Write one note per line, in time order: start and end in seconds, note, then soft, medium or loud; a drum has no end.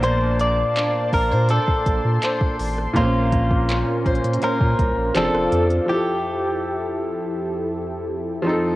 0.00 0.64 A#1 loud
0.00 2.54 A#2 medium
0.00 0.60 F3 medium
0.00 2.55 A#3 medium
0.00 2.96 A#3 medium
0.00 2.56 D4 medium
0.00 2.57 C5 medium
0.00 0.38 C5 loud
0.00 2.93 D5 medium
0.00 2.92 A5 medium
0.00 5.11 C6 medium
0.00 closed hi-hat medium
0.40 1.10 D5 loud
0.40 closed hi-hat medium
0.76 1.48 D4 medium
0.76 clap loud
0.76 closed hi-hat medium
1.13 1.33 A#1 medium
1.13 1.31 A#4 medium
1.13 1.50 A#4 loud
1.13 kick loud
1.13 open hi-hat medium
1.31 1.59 A#2 medium
1.31 1.50 C5 medium
1.49 2.22 D4 medium
1.49 2.22 A4 medium
1.49 2.56 A4 medium
1.49 2.24 C5 medium
1.49 closed hi-hat medium
1.68 kick loud
1.86 2.00 A#1 medium
1.86 kick loud
1.86 closed hi-hat medium
2.05 2.19 A#2 medium
2.23 3.03 D4 medium
2.23 3.04 A4 medium
2.23 3.72 C5 medium
2.23 clap loud
2.23 closed hi-hat medium
2.41 kick loud
2.59 2.87 A1 loud
2.59 open hi-hat medium
2.78 cross-stick medium
2.93 3.83 A#1 loud
2.93 5.10 A#2 medium
2.93 5.11 A#3 medium
2.93 5.23 A#3 medium
2.93 5.13 C#4 medium
2.93 4.43 F4 medium
2.93 5.13 A#4 medium
2.93 kick loud
2.93 closed hi-hat medium
2.98 3.03 C4 soft
2.98 5.13 C5 medium
3.04 5.16 C#4 medium
3.32 kick loud
3.32 closed hi-hat medium
3.51 kick loud
3.69 4.41 C#4 medium
3.69 clap loud
3.69 closed hi-hat medium
4.06 4.20 A#1 loud
4.06 4.43 C5 medium
4.06 kick loud
4.06 closed hi-hat soft
4.15 closed hi-hat medium
4.24 4.38 A#2 medium
4.24 closed hi-hat medium
4.33 closed hi-hat medium
4.42 5.23 C#4 medium
4.42 6.46 F4 medium
4.42 5.16 A#4 loud
4.42 6.46 C5 medium
4.42 closed hi-hat medium
4.61 4.74 A#2 loud
4.61 kick medium
4.79 4.93 C2 loud
4.79 kick medium
4.79 closed hi-hat medium
4.97 5.11 A#1 medium
5.14 5.29 F1 loud
5.14 5.84 F3 medium
5.14 6.46 F3 medium
5.14 5.89 C4 medium
5.14 5.89 D4 medium
5.14 5.23 G#4 medium
5.14 5.88 A4 medium
5.14 5.67 A4 medium
5.14 5.88 F5 medium
5.14 5.88 D6 medium
5.14 clap loud
5.14 closed hi-hat medium
5.24 5.91 A4 medium
5.34 5.48 F1 medium
5.34 cross-stick loud
5.52 5.80 F2 loud
5.52 closed hi-hat medium
5.52 open hi-hat medium
5.70 closed hi-hat soft
5.86 8.76 F2 medium
5.86 8.39 F3 medium
5.86 8.40 E4 medium
5.86 8.42 E4 medium
5.86 8.42 G4 medium
5.86 8.41 G4 loud
5.86 8.42 A4 medium
5.90 8.42 G4 medium
5.90 8.43 A4 medium
8.42 8.76 D#3 medium
8.42 8.76 F3 medium
8.42 8.76 C4 medium
8.42 8.76 A4 medium
8.47 8.76 D#4 medium
8.47 8.76 A4 medium